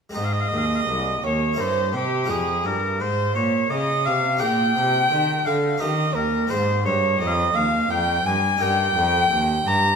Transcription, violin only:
0, 0, Header, 1, 2, 480
1, 0, Start_track
1, 0, Key_signature, -4, "major"
1, 0, Tempo, 710059
1, 108, Time_signature, 3, 2, 24, 8
1, 2507, Tempo, 700935
1, 6785, End_track
2, 0, Start_track
2, 0, Title_t, "Violin"
2, 0, Program_c, 0, 40
2, 112, Note_on_c, 0, 75, 93
2, 839, Note_on_c, 0, 73, 73
2, 849, Note_off_c, 0, 75, 0
2, 1072, Note_off_c, 0, 73, 0
2, 1076, Note_on_c, 0, 72, 81
2, 1305, Note_off_c, 0, 72, 0
2, 1317, Note_on_c, 0, 67, 85
2, 1552, Note_on_c, 0, 68, 76
2, 1562, Note_off_c, 0, 67, 0
2, 1802, Note_on_c, 0, 70, 68
2, 1812, Note_off_c, 0, 68, 0
2, 2033, Note_off_c, 0, 70, 0
2, 2037, Note_on_c, 0, 72, 76
2, 2271, Note_on_c, 0, 73, 74
2, 2282, Note_off_c, 0, 72, 0
2, 2509, Note_off_c, 0, 73, 0
2, 2514, Note_on_c, 0, 75, 88
2, 2748, Note_on_c, 0, 77, 89
2, 2758, Note_off_c, 0, 75, 0
2, 2986, Note_off_c, 0, 77, 0
2, 2990, Note_on_c, 0, 79, 101
2, 3711, Note_on_c, 0, 77, 75
2, 3721, Note_off_c, 0, 79, 0
2, 3950, Note_on_c, 0, 75, 94
2, 3960, Note_off_c, 0, 77, 0
2, 4179, Note_on_c, 0, 70, 83
2, 4190, Note_off_c, 0, 75, 0
2, 4413, Note_off_c, 0, 70, 0
2, 4417, Note_on_c, 0, 72, 82
2, 4654, Note_off_c, 0, 72, 0
2, 4662, Note_on_c, 0, 73, 75
2, 4888, Note_off_c, 0, 73, 0
2, 4892, Note_on_c, 0, 75, 92
2, 5128, Note_on_c, 0, 77, 86
2, 5138, Note_off_c, 0, 75, 0
2, 5377, Note_on_c, 0, 79, 101
2, 5387, Note_off_c, 0, 77, 0
2, 5626, Note_on_c, 0, 80, 96
2, 5636, Note_off_c, 0, 79, 0
2, 5865, Note_off_c, 0, 80, 0
2, 5869, Note_on_c, 0, 79, 102
2, 6596, Note_on_c, 0, 82, 100
2, 6607, Note_off_c, 0, 79, 0
2, 6785, Note_off_c, 0, 82, 0
2, 6785, End_track
0, 0, End_of_file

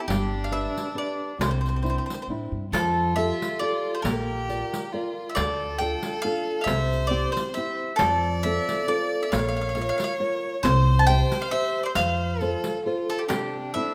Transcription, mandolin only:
0, 0, Header, 1, 2, 480
1, 0, Start_track
1, 0, Key_signature, -1, "major"
1, 0, Tempo, 440205
1, 98, Time_signature, 3, 2, 24, 8
1, 15203, End_track
2, 0, Start_track
2, 0, Title_t, "Mandolin"
2, 0, Program_c, 0, 25
2, 85, Note_on_c, 0, 67, 81
2, 472, Note_off_c, 0, 67, 0
2, 482, Note_on_c, 0, 77, 64
2, 563, Note_off_c, 0, 77, 0
2, 572, Note_on_c, 0, 76, 83
2, 1065, Note_off_c, 0, 76, 0
2, 1069, Note_on_c, 0, 74, 76
2, 1534, Note_off_c, 0, 74, 0
2, 1538, Note_on_c, 0, 72, 79
2, 1619, Note_off_c, 0, 72, 0
2, 1645, Note_on_c, 0, 72, 54
2, 1717, Note_off_c, 0, 72, 0
2, 1753, Note_on_c, 0, 72, 52
2, 1816, Note_off_c, 0, 72, 0
2, 1840, Note_on_c, 0, 72, 44
2, 1890, Note_off_c, 0, 72, 0
2, 1922, Note_on_c, 0, 72, 42
2, 1968, Note_off_c, 0, 72, 0
2, 1990, Note_on_c, 0, 72, 44
2, 2040, Note_off_c, 0, 72, 0
2, 2068, Note_on_c, 0, 72, 53
2, 2130, Note_off_c, 0, 72, 0
2, 2162, Note_on_c, 0, 72, 42
2, 2221, Note_off_c, 0, 72, 0
2, 2246, Note_on_c, 0, 72, 57
2, 2306, Note_off_c, 0, 72, 0
2, 2336, Note_on_c, 0, 72, 49
2, 2382, Note_off_c, 0, 72, 0
2, 2421, Note_on_c, 0, 72, 50
2, 2462, Note_off_c, 0, 72, 0
2, 2979, Note_on_c, 0, 69, 84
2, 3443, Note_on_c, 0, 76, 93
2, 3475, Note_off_c, 0, 69, 0
2, 3898, Note_off_c, 0, 76, 0
2, 3918, Note_on_c, 0, 74, 85
2, 4274, Note_off_c, 0, 74, 0
2, 4302, Note_on_c, 0, 72, 67
2, 4353, Note_off_c, 0, 72, 0
2, 4386, Note_on_c, 0, 70, 73
2, 5316, Note_off_c, 0, 70, 0
2, 5773, Note_on_c, 0, 76, 65
2, 5833, Note_on_c, 0, 74, 98
2, 5847, Note_off_c, 0, 76, 0
2, 6286, Note_off_c, 0, 74, 0
2, 6308, Note_on_c, 0, 79, 102
2, 6775, Note_off_c, 0, 79, 0
2, 6779, Note_on_c, 0, 77, 107
2, 7175, Note_off_c, 0, 77, 0
2, 7210, Note_on_c, 0, 77, 57
2, 7238, Note_on_c, 0, 76, 94
2, 7282, Note_off_c, 0, 77, 0
2, 7707, Note_off_c, 0, 76, 0
2, 7710, Note_on_c, 0, 74, 93
2, 7978, Note_off_c, 0, 74, 0
2, 7982, Note_on_c, 0, 72, 79
2, 8048, Note_off_c, 0, 72, 0
2, 8221, Note_on_c, 0, 76, 77
2, 8679, Note_on_c, 0, 69, 84
2, 8684, Note_off_c, 0, 76, 0
2, 9193, Note_on_c, 0, 76, 95
2, 9203, Note_off_c, 0, 69, 0
2, 9651, Note_off_c, 0, 76, 0
2, 9685, Note_on_c, 0, 74, 90
2, 10037, Note_off_c, 0, 74, 0
2, 10060, Note_on_c, 0, 76, 68
2, 10157, Note_off_c, 0, 76, 0
2, 10161, Note_on_c, 0, 77, 85
2, 10225, Note_off_c, 0, 77, 0
2, 10238, Note_on_c, 0, 77, 59
2, 10329, Note_off_c, 0, 77, 0
2, 10342, Note_on_c, 0, 77, 62
2, 10416, Note_off_c, 0, 77, 0
2, 10429, Note_on_c, 0, 77, 50
2, 10470, Note_off_c, 0, 77, 0
2, 10483, Note_on_c, 0, 77, 60
2, 10553, Note_off_c, 0, 77, 0
2, 10566, Note_on_c, 0, 77, 55
2, 10618, Note_off_c, 0, 77, 0
2, 10631, Note_on_c, 0, 77, 59
2, 10689, Note_off_c, 0, 77, 0
2, 10702, Note_on_c, 0, 77, 58
2, 10772, Note_off_c, 0, 77, 0
2, 10785, Note_on_c, 0, 77, 76
2, 10867, Note_off_c, 0, 77, 0
2, 10880, Note_on_c, 0, 77, 65
2, 10933, Note_off_c, 0, 77, 0
2, 10947, Note_on_c, 0, 77, 78
2, 11040, Note_off_c, 0, 77, 0
2, 11590, Note_on_c, 0, 72, 99
2, 11984, Note_off_c, 0, 72, 0
2, 11985, Note_on_c, 0, 81, 80
2, 12062, Note_off_c, 0, 81, 0
2, 12067, Note_on_c, 0, 79, 119
2, 12424, Note_off_c, 0, 79, 0
2, 12449, Note_on_c, 0, 77, 84
2, 12549, Note_off_c, 0, 77, 0
2, 12553, Note_on_c, 0, 76, 95
2, 12883, Note_off_c, 0, 76, 0
2, 12902, Note_on_c, 0, 74, 65
2, 12927, Note_on_c, 0, 72, 67
2, 12937, Note_off_c, 0, 74, 0
2, 12980, Note_off_c, 0, 72, 0
2, 13036, Note_on_c, 0, 77, 101
2, 13963, Note_off_c, 0, 77, 0
2, 14280, Note_on_c, 0, 69, 82
2, 14377, Note_on_c, 0, 67, 59
2, 14393, Note_off_c, 0, 69, 0
2, 14429, Note_off_c, 0, 67, 0
2, 14487, Note_on_c, 0, 67, 79
2, 14941, Note_off_c, 0, 67, 0
2, 14980, Note_on_c, 0, 76, 93
2, 15203, Note_off_c, 0, 76, 0
2, 15203, End_track
0, 0, End_of_file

